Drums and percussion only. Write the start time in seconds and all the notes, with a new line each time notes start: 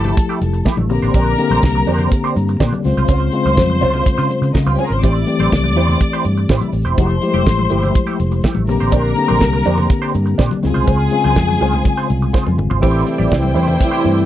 0.04 closed hi-hat, low conga
0.17 kick, closed hi-hat
0.30 closed hi-hat
0.42 closed hi-hat, muted conga
0.54 closed hi-hat
0.65 kick, snare, muted conga
0.77 high conga, low conga
0.89 open hi-hat, muted conga
1.04 closed hi-hat
1.14 kick, closed hi-hat, muted conga
1.38 closed hi-hat, muted conga
1.51 closed hi-hat, high conga
1.63 kick, snare
1.75 high conga
1.87 closed hi-hat, muted conga
1.99 closed hi-hat, low conga
2.12 kick, closed hi-hat
2.36 closed hi-hat, muted conga
2.48 closed hi-hat
2.60 kick, snare
2.73 closed hi-hat, high conga, low conga
2.84 snare, open hi-hat
2.98 closed hi-hat
3.08 kick, closed hi-hat
3.20 closed hi-hat
3.32 closed hi-hat
3.46 closed hi-hat, high conga
3.57 kick, snare
3.70 high conga
3.81 closed hi-hat
3.94 closed hi-hat, low conga
4.06 kick, closed hi-hat, muted conga
4.19 closed hi-hat
4.31 closed hi-hat, muted conga
4.43 closed hi-hat
4.55 kick, snare, muted conga
4.67 closed hi-hat, high conga, low conga
4.78 open hi-hat, muted conga
4.92 closed hi-hat
5.03 kick, closed hi-hat, muted conga
5.16 closed hi-hat
5.27 closed hi-hat, muted conga
5.39 closed hi-hat, high conga
5.51 kick, snare, muted conga
5.63 closed hi-hat, high conga
5.76 closed hi-hat, muted conga
5.88 closed hi-hat, low conga
6.01 kick, closed hi-hat
6.13 closed hi-hat
6.25 closed hi-hat, muted conga
6.37 closed hi-hat
6.49 kick, snare
6.61 closed hi-hat, high conga, low conga
6.73 open hi-hat, muted conga
6.87 closed hi-hat
6.98 kick, closed hi-hat, muted conga
7.10 closed hi-hat
7.22 closed hi-hat
7.34 closed hi-hat, high conga
7.46 kick, snare, muted conga
7.58 high conga
7.70 closed hi-hat, muted conga
7.83 closed hi-hat, low conga
7.95 kick, closed hi-hat, muted conga
8.20 closed hi-hat, muted conga
8.32 closed hi-hat
8.43 kick, snare, muted conga
8.55 high conga, low conga
8.67 snare, open hi-hat
8.81 closed hi-hat
8.92 kick, closed hi-hat
9.16 closed hi-hat, muted conga
9.28 closed hi-hat, high conga
9.40 kick, snare, muted conga
9.53 closed hi-hat, high conga
9.65 closed hi-hat, muted conga
9.77 closed hi-hat, low conga
9.90 kick, closed hi-hat
10.03 closed hi-hat
10.14 closed hi-hat, muted conga
10.27 closed hi-hat
10.39 kick, snare
10.51 closed hi-hat, high conga, low conga
10.63 snare, open hi-hat
10.76 closed hi-hat
10.87 kick, closed hi-hat, muted conga
10.99 closed hi-hat
11.10 closed hi-hat, muted conga
11.24 closed hi-hat, high conga
11.36 kick, snare, muted conga
11.50 high conga
11.60 closed hi-hat
11.73 closed hi-hat, low conga
11.85 kick, closed hi-hat, muted conga
12.10 closed hi-hat, muted conga
12.22 closed hi-hat
12.34 kick, snare
12.47 high conga, low conga
12.58 mid tom, muted conga
12.71 floor tom
12.83 kick, crash, muted conga
13.07 closed hi-hat, muted conga
13.19 closed hi-hat, high conga
13.31 kick, snare, muted conga
13.44 closed hi-hat, high conga
13.56 closed hi-hat
13.67 closed hi-hat, low conga
13.80 kick, closed hi-hat, muted conga
14.05 closed hi-hat, muted conga
14.18 closed hi-hat